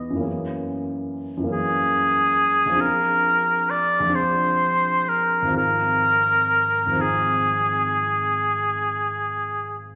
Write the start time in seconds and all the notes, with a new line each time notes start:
Already playing: E2 E3 B3 D#4 G#4
0.10 F#2 E3
0.17 A#3 C#4
0.24 G#4
1.37 F#2 E3
1.44 A#3 C#4
1.51 G#4
2.65 A#1 F3
2.72 C4 D4
2.79 G#4 A#4
3.70 D5
4.00 A#1 F3
4.06 C4 D4
4.13 G#4 C5
5.09 A#4
5.42 G#1 F3
5.48 C4 D#4
5.55 G#4 A#4
6.86 G#1 F3
6.92 C4 D#4
6.99 G#4